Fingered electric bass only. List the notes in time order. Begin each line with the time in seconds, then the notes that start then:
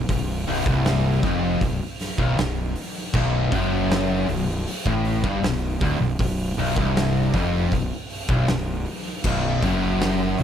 0.09 B0
0.48 B0
0.66 C1
1.23 F1
1.61 B0
2.19 B0
2.39 B0
3.14 B0
3.52 F#1
4.29 B0
4.86 A1
5.23 G1
5.42 B0
5.81 D1
6.00 B0
6.19 B0
6.57 B0
6.76 C1
7.34 F1
7.72 B0
8.29 B0
8.48 B0
9.24 B0
9.62 F#1
10.39 B0